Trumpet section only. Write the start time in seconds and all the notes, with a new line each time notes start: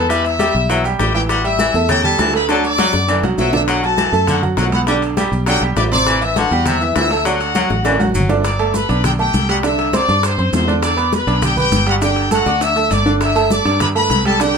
0.10 B4 B5
0.24 E5 E6
0.99 G4 G5
1.14 G4 G5
1.29 F#4 F#5
1.44 E5 E6
1.89 G4 G5
2.03 A4 A5
2.34 B4 B5
2.48 A4 A5
2.64 D5 D6
3.38 E5 E6
3.54 E5 E6
3.68 F#4 F#5
3.83 A4 A5
4.28 F#4 F#5
4.58 F#4 F#5
4.73 F#4 F#5
4.88 G4 G5
5.47 G4 G5
5.76 D5 D6
5.92 D5 D6
6.22 E5 E6
6.37 F#4 F#5
6.67 E5 E6
6.96 E5 E6
7.26 F#4 F#5
8.45 D5 D6
8.74 B4 B5
9.04 G4 G5
9.19 G4 G5
9.49 F#4 F#5
9.64 E5 E6
9.94 D5 D6
10.25 C5 C6
10.54 C5 C6
10.84 D5 D6
11.13 B4 B5
11.43 G4 G5
11.59 G4 G5
11.88 F#4 F#5
12.03 G4 G5
12.32 F#4 F#5
12.62 E5 E6
12.92 D5 D6
13.22 E5 E6
13.52 D5 D6
13.81 B4 B5
13.96 B4 B5
14.26 A4 A5
14.41 G4 G5